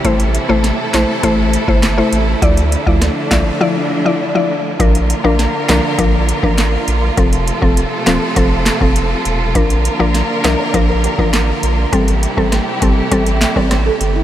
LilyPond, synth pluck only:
\new Staff \with { instrumentName = "Synth pluck" } { \time 4/4 \key bes \lydian \tempo 4 = 101 <a e' c''>16 r8 <a e' c''>16 r8 <a e' c''>16 r16 <a e' c''>8. <a e' c''>16 r16 <a e' c''>16 r8 | <f e' d''>16 r8 <f e' d''>16 r8 <f e' d''>16 r16 <f e' d''>8. <f e' d''>16 r16 <f e' d''>16 r8 | <f d' bes'>16 r8 <f d' bes'>16 r8 <f d' bes'>16 r16 <f d' bes'>16 r8 <f d' bes'>16 r4 | <f c' a'>16 r8 <f c' a'>16 r8 <f c' a'>16 r16 <f c' a'>16 r8 <f c' a'>16 r4 |
<f d' bes'>16 r8 <f d' bes'>16 r8 <f d' bes'>16 r16 <f d' bes'>16 r8 <f d' bes'>16 r4 | <g c' a'>16 r8 <g c' a'>16 r8 <g c' a'>16 r16 <g c' a'>16 r8 <g c' a'>16 r4 | }